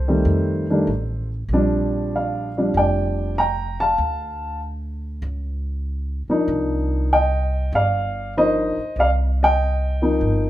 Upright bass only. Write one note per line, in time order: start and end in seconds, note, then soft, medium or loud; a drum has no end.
0.00 0.22 C2 medium
0.25 0.84 F2 medium
0.87 1.46 A1 medium
1.49 2.70 A#1 medium
2.74 3.95 F1 medium
3.98 5.20 D2 medium
5.22 6.24 C#2 medium
6.28 muted upright bass stroke soft
6.48 7.69 C2 medium
7.72 8.74 G1 medium
8.77 muted upright bass stroke soft
8.96 10.18 C2 medium
10.21 10.50 G1 medium